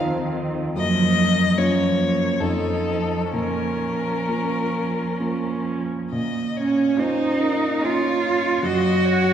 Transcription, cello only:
Already playing: D#3
0.75 F3
1.56 F3
2.40 F3
3.34 F3
6.58 C#4
6.99 D#4
7.85 F4
8.65 F#4

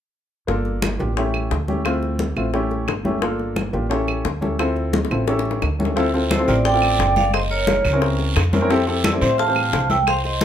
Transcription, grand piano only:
0.47 A#3 D4 F4 A4
0.99 A#3 D4 F4 G4
1.17 A3 C#4 E4 G4
1.68 A3 C#4 E4 G4
1.85 A3 C4 E4 F4
2.36 A3 C4 E4 F4
2.53 A3 C#4 E4 G4
3.04 A3 C#4 E4 G4
3.22 A#3 D4 F4 A4
3.73 A#3 D4 F4 G4
3.89 C#4 E4 G4 A4
4.41 C#4 E4 G4 A4
4.59 C4 E4 F4 A4
5.11 C4 E4 F4 A4
5.28 C#4 E4 G4 A4
5.79 C#4 E4 G4 A4
5.96 C4 E4 F4 A4
6.14 C4 E4 F4 A4
6.39 C4 E4 F4 A4
6.47 C4 E4 F4 G4
6.73 C4 E4 F4 A4
7.93 C4 C#4 E4 A#4
8.52 C4 C#4 E4 A#4
8.61 C4 C#4 E4 A#4
8.70 C4 E4 G4 A4
8.87 C4 E4 G4 A4
9.12 C4 E4 G4 A4
9.21 C4 E4 G4 C5
9.47 E3 C4 G4 C5

